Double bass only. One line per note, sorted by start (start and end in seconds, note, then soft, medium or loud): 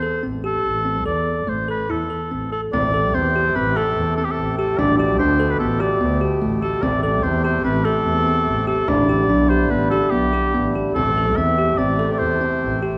0.23 0.56 A1 medium
0.64 1.07 A1 medium
1.06 1.39 E2 medium
1.47 1.81 A1 medium
1.89 2.06 E2 medium
2.31 2.65 A1 medium
2.73 3.16 A1 medium
3.14 3.48 E2 medium
3.56 3.89 A1 medium
3.97 4.14 E2 medium
4.38 4.71 A1 medium
4.79 5.21 A1 medium
5.20 5.53 D2 medium
5.61 5.94 A1 medium
6.01 6.18 D2 medium
6.42 6.75 A1 medium
6.83 7.25 A1 medium
7.24 7.57 E2 medium
7.65 7.98 A1 medium
8.05 8.22 E2 medium
8.46 8.80 A1 medium
8.88 9.31 A1 medium
9.29 9.63 B1 medium
9.71 10.04 A1 medium
10.12 10.29 B1 medium
10.54 10.88 A1 medium
10.96 11.39 A1 medium
11.37 11.71 E2 medium
11.79 12.12 A1 medium
12.20 12.37 E2 medium
12.62 12.95 A1 medium